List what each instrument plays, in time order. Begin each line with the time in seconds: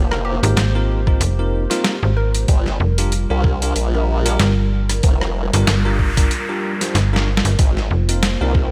Already playing: wobble bass F1, analog synth pad A#3 G4 C5
0.11 synth pluck A#4, cross-stick
0.25 synth pluck G4
0.43 fm bass G#1, tine electric piano C4 D#4 F4 A#4, synth pluck G4, closed hi-hat
0.57 fm bass G#1, snare, closed hi-hat
0.75 tine electric piano C4 D#4 F4 A#4
1.07 tine electric piano C4 D#4 F4 A#4, kick
1.20 fm bass F1, closed hi-hat
1.39 tine electric piano C4 D#4 F4 A#4
1.70 tine electric piano C4 D#4 F4 A#4, synth pluck F4, snare, closed hi-hat
1.84 synth pluck F4, snare, closed hi-hat
2.03 fm bass G#1
2.17 synth pluck A#4
2.35 closed hi-hat
2.48 wobble bass G1, analog synth pad G3 F4 A#4, kick, closed hi-hat
2.66 snare
2.80 fm bass F1
2.98 tine electric piano D4 F4 G4 A#4, closed hi-hat
3.12 closed hi-hat
3.30 wobble bass C2, tine electric piano D4 F4 G4 A#4
3.44 kick
3.62 tine electric piano D4 F4 G4 A#4, closed hi-hat
3.76 wobble bass A#1, closed hi-hat
3.94 tine electric piano D4 F4 G4 A#4
4.26 tine electric piano D4 F4 G4 A#4, closed hi-hat
4.39 fm bass G1, snare, closed hi-hat
4.89 cross-stick, closed hi-hat
5.03 wobble bass F1, kick, closed hi-hat, noise sweep
5.21 cross-stick
5.53 fm bass G1, tine electric piano D4 F4 G4 A#4, closed hi-hat
5.67 fm bass G1, snare, closed hi-hat
5.85 tine electric piano D4 F4 G4 A#4
5.99 kick
6.17 tine electric piano D4 F4 G4 A#4, kick, closed hi-hat
6.31 closed hi-hat
6.49 tine electric piano D4 F4 G4 A#4
6.81 tine electric piano D4 F4 G4 C5, snare, closed hi-hat
6.95 fm bass G1, snare, closed hi-hat
7.13 tine electric piano D4 F4 G4 A#4, snare
7.37 snare
7.45 fm bass G1, closed hi-hat
7.59 wobble bass G#1, analog synth pad A#3 C5, kick, closed hi-hat
7.77 snare
7.91 fm bass F1
8.09 tine electric piano C4 D#4 F4 A#4, closed hi-hat
8.23 snare, closed hi-hat
8.41 wobble bass C2, tine electric piano C4 D#4 F4 A#4
8.55 kick